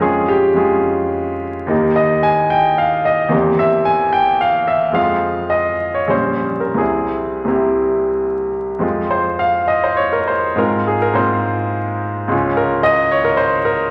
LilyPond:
<<
  \new Staff \with { instrumentName = "Grand piano" } { \time 3/4 \key f \minor \tempo 4 = 106 aes'8 g'8 aes'4. r8 | r8 ees''8 aes''8 g''8 f''8 ees''8 | r8 e''8 aes''8 g''8 f''8 e''8 | f''4 ees''8. des''16 c''8. bes'16 |
aes'4 g'4. r8 | r8 c''8 f''8 ees''16 c''16 des''16 bes'16 c''8 | bes'8 aes'16 bes'16 c''4. r8 | r8 bes'8 ees''8 des''16 bes'16 c''8 bes'8 | }
  \new Staff \with { instrumentName = "Grand piano" } { \time 3/4 \key f \minor <f, aes des' f'>4 <f, aes des' f'>2 | <ees, bes ees' g'>2. | <e, bes c' g'>2. | <f, aes c' f'>2 <bes,, g des' g'>4 |
<c, g c' e'>4 <c, g c' e'>2 | <f, aes c' f'>2. | <aes, aes c' f'>4 <aes, aes c' f'>2 | <des, aes des' f'>2. | }
>>